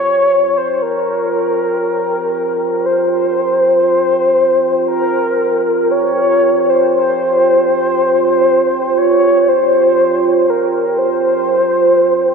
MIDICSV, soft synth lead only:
0, 0, Header, 1, 2, 480
1, 0, Start_track
1, 0, Tempo, 500000
1, 11851, End_track
2, 0, Start_track
2, 0, Title_t, "Soft synth lead"
2, 0, Program_c, 0, 80
2, 0, Note_on_c, 0, 73, 107
2, 550, Note_on_c, 0, 72, 95
2, 564, Note_off_c, 0, 73, 0
2, 789, Note_on_c, 0, 70, 108
2, 804, Note_off_c, 0, 72, 0
2, 2744, Note_on_c, 0, 72, 109
2, 2758, Note_off_c, 0, 70, 0
2, 4679, Note_off_c, 0, 72, 0
2, 4684, Note_on_c, 0, 70, 99
2, 5676, Note_on_c, 0, 73, 109
2, 5690, Note_off_c, 0, 70, 0
2, 6427, Note_on_c, 0, 72, 94
2, 6442, Note_off_c, 0, 73, 0
2, 6658, Note_off_c, 0, 72, 0
2, 6664, Note_on_c, 0, 72, 110
2, 8620, Note_on_c, 0, 73, 110
2, 8635, Note_off_c, 0, 72, 0
2, 9105, Note_on_c, 0, 72, 110
2, 9119, Note_off_c, 0, 73, 0
2, 10078, Note_on_c, 0, 70, 91
2, 10092, Note_off_c, 0, 72, 0
2, 10542, Note_on_c, 0, 72, 100
2, 10557, Note_off_c, 0, 70, 0
2, 11851, Note_off_c, 0, 72, 0
2, 11851, End_track
0, 0, End_of_file